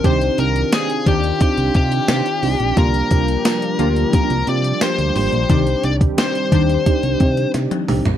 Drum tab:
HH |xxxxxxxxxxxxxxox|xxxxxxxxxxxxxxox|xxxxxxxxxxxxxxox|
TB |----x-------x---|----x-------x---|----x-----------|
SD |----o-------o---|----o-------o---|----o-------o---|
T1 |----------------|----------------|-------------o--|
T2 |----------------|----------------|--------------o-|
FT |----------------|----------------|---------------o|
BD |o-----o-o-o-----|o-o-----o-------|o--o--o-o-o-----|